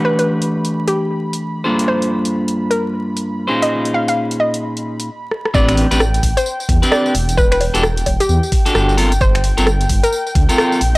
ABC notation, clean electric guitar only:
X:1
M:4/4
L:1/16
Q:"Swing 16ths" 1/4=131
K:Gmix
V:1 name="Clean electric guitar"
[E,A,DGB^f]12- [E,A,DGBf]2 [G,,_B,D=FAc]2- | [G,,_B,DFAc]12- [G,,B,DFAc]2 [_B,,_D_EF_Ac]2- | [_B,,_D_EF_Ac]12 z4 | [CDGB]3 [CDGB] z6 z [CDGB]3 z2 |
z3 [D^FGA] z6 z [DFGA]3 [C=FA_B] z | z3 [CFA_B] z6 z [CFAB]3 z2 |]